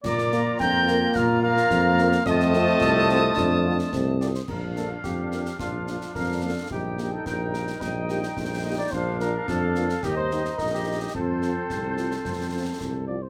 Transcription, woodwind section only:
\new Staff \with { instrumentName = "Woodwind section" } { \time 2/4 \key bes \major \tempo 4 = 108 <f' bes''>2 | <f' bes''>2 | <f' a''>2~ | <f' a''>4. r8 |
<d' f''>2 | <d' f''>4 <d' f''>4 | <ees' g''>4 <ees' g''>4 | <ees' g''>2 |
<d' f''>2 | <ees' ees''>4 <ees' ees''>4 | <f' c''>2~ | <f' c''>4. r8 | }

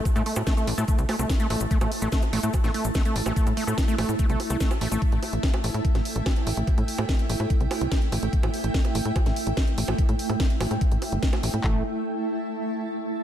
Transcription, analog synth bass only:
\new Staff \with { instrumentName = "Analog synth bass" } { \clef bass \time 4/4 \key c \mixolydian \tempo 4 = 145 r16 a,16 r16 a,16 r8 a,,16 a,16 r16 c,16 r16 c,16 r8 a,,16 a,,16 | r16 a,,16 r16 a,,16 r8 a,,16 a,16 r16 a,,16 r16 a,,16 r8 a,,16 a,,16 | r16 a,16 r16 a,16 r8 a,,16 a,16 r16 c,16 r16 c,16 r8 a,,16 a,,16 | r16 a,,16 r16 a,,16 r8 a,,16 a,16 r16 a,,16 r16 a,,16 r8 a,,16 a,,16 |
r16 a,16 r16 a,16 r8 a,,16 a,16 r16 c,16 r16 c,16 r8 a,,16 a,,16 | r16 a,,16 r16 a,,16 r8 a,,16 a,16 r16 a,,16 r16 a,,16 r8 a,,16 a,,16 | r16 a,16 r16 a,16 r8 a,,16 a,16 r16 a,,16 r16 g,,16 r8 a,,16 a,16 | a,,8 r2. r8 | }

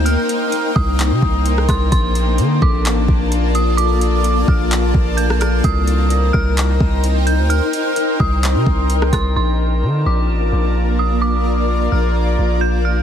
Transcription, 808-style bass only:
\new Staff \with { instrumentName = "808-style bass" } { \clef bass \time 4/4 \key bes \major \tempo 4 = 129 d,16 r4 r16 c,8. c16 c,4 c,8 | bes,,4 d8 bes,,8 a,,8 bes,,4.~ | bes,,4. bes,,4 bes,,4. | c,4. c,4 c,4~ c,16 d,16~ |
d,16 r4 r16 c,8. c16 c,4 c,8 | bes,,4 d8 bes,,8 a,,8 bes,,4.~ | bes,,4. bes,,4 bes,,4. | }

